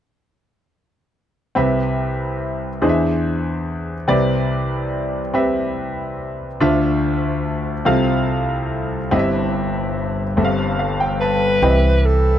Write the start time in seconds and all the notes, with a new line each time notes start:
1.55 C2 C3 C4 G4 B4 E5
2.82 E2 E3 D4 G#4 C5 D#5
2.89 E5
4.08 C2 C3 C4 G4 B4 D5
5.34 C4 G4 B4 E5
6.60 D2 D3 D4 F4 C5 E5
7.85 C2 C3 C4 F4 A4 F5
9.11 G1 G2 C4 E4 G4 D#5
9.19 E5
10.37 G1 G2 C4 G4 A4 E5
10.45 F5
10.79 F5
11.00 G5
11.20 B4 A5
11.62 C2 E3 C4 G4 B4 D#5
11.70 E5
12.05 A4